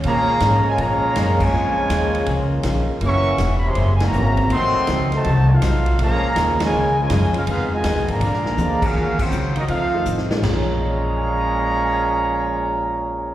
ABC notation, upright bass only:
X:1
M:4/4
L:1/8
Q:"Swing" 1/4=162
K:Bbm
V:1 name="Upright bass" clef=bass
B,,2 A,,2 B,,2 G,,2 | F,,2 E,,2 D,,2 B,,, z | G,,,2 _F,,,2 G,,,2 A,,,2 | =A,,, z D,,2 C,,2 _C,,2 |
B,,, z E,,2 D,,2 (3G,, F,, D,, | F,,2 (3E,, _C,, A,,, B,,,2 =D,,2 | E,,2 D,,2 F,,2 =A,,2 | B,,,8- |
B,,,8 |]